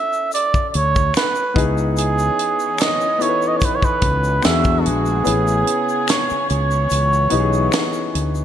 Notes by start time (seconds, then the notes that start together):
Already playing: C#4 E4 F#4 A4 E5
0.13 shaker
0.32 D5, closed hi-hat, shaker
0.54 kick, shaker
0.69 D5
0.74 D2 C#5, closed hi-hat
0.96 kick, shaker
1.14 B4, finger snap, snare, closed hi-hat, shaker
1.35 shaker
1.54 C#2 B3 D#4 E4 G#4, kick, closed hi-hat
1.78 shaker
1.96 E3 B3 C#4 G#4, closed hi-hat, shaker
2.19 shaker
2.39 closed hi-hat
2.60 shaker
2.78 D#5, finger snap, snare, closed hi-hat, shaker
3.01 shaker
3.18 B3 D#4 E4 A4 C#5, closed hi-hat, shaker
3.29 B4
3.42 shaker
3.48 D#5
3.57 C#5, shaker
3.62 B4, kick, closed hi-hat
3.75 C#5
3.83 B4, kick, shaker
4.01 C#2, kick, closed hi-hat
4.24 shaker
4.42 E2 D3 G#3 B3 D4 F#4 G#4 E5, finger snap, snare, closed hi-hat, shaker
4.64 kick, shaker
4.80 A4
4.86 A#1 G#4, closed hi-hat
5.06 shaker
5.24 A1 C#3 B3 C#4 E4 G#4, closed hi-hat, shaker
5.28 G#4
5.47 shaker
5.67 closed hi-hat
5.89 shaker
6.08 C#5, finger snap, snare, closed hi-hat, shaker
6.30 muted fretless electric bass stroke, shaker
6.50 C#2 C#5, closed hi-hat, shaker
6.71 shaker
6.89 C#2 E3 C#4, closed hi-hat, shaker
7.13 shaker
7.30 B1 B3 D#4 E4 G4, closed hi-hat
7.40 G#4
7.53 shaker
7.72 finger snap, snare, closed hi-hat, shaker
7.93 shaker
8.15 D2, closed hi-hat
8.35 shaker